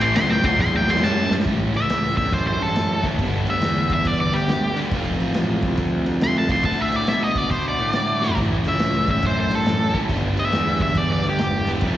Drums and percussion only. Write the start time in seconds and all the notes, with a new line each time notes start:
0.01 ride
0.16 snare, ride
0.44 kick, ride
0.59 kick, snare
0.88 snare
0.95 snare
1.03 snare
1.31 snare
1.40 snare
1.46 kick, open hi-hat
1.74 open hi-hat
1.90 snare, open hi-hat
2.17 kick, open hi-hat
2.33 kick, open hi-hat
2.61 open hi-hat
2.76 snare, open hi-hat
3.04 kick, snare, open hi-hat
3.19 kick, open hi-hat
3.47 open hi-hat
3.62 snare, open hi-hat
3.90 kick, open hi-hat
4.05 kick, open hi-hat
4.33 open hi-hat
4.49 snare, open hi-hat
4.77 snare, open hi-hat
4.91 kick, open hi-hat
5.20 open hi-hat
5.34 snare, open hi-hat
5.62 kick, open hi-hat
5.78 kick, open hi-hat
6.06 open hi-hat
6.21 snare, open hi-hat
6.49 kick, open hi-hat
6.64 kick, open hi-hat
6.92 open hi-hat
7.07 snare, open hi-hat
7.35 kick, open hi-hat
7.51 kick, open hi-hat
7.79 open hi-hat
7.93 snare, open hi-hat
8.22 snare
8.29 floor tom
8.37 kick, open hi-hat
8.65 open hi-hat
8.79 snare, open hi-hat
9.08 kick, open hi-hat
9.23 kick, open hi-hat
9.51 open hi-hat
9.66 snare, open hi-hat
9.94 kick, open hi-hat
10.09 kick, open hi-hat
10.37 open hi-hat
10.53 snare, open hi-hat
10.80 kick, open hi-hat
10.95 kick, open hi-hat
11.24 open hi-hat
11.39 snare, open hi-hat
11.67 open hi-hat
11.81 kick, open hi-hat